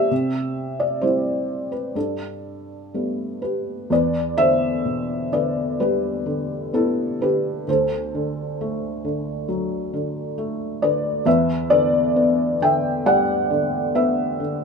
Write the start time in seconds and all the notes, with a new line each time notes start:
Already playing: G3 A3 B3 D4 G4 B4 C5 D5 E5
0.11 C3
0.80 D5
1.01 G3 C4 E4 C5
1.72 B4
1.95 G2 D4 A4
2.94 G3 A3 B3
3.42 G4 B4
3.90 E2 B4 D5
4.37 D3 C5 E5
4.85 B2
5.32 D3 B4 D5
5.80 G3 G4 B4
6.26 D3
6.73 B3 E4 A4
7.21 D3 G4 B4
7.68 D2 A4 C5
8.15 D3
8.61 A3
9.04 D3
9.48 F#3
9.94 D3
10.38 A3
10.82 D3 B4 D5
11.26 E2 B4 E5
11.70 D3 B4 D5
12.16 B3
12.62 D3 E5 G5
13.06 G3 D5 F#5
13.50 D3
13.95 B3 B4 E5
14.40 D3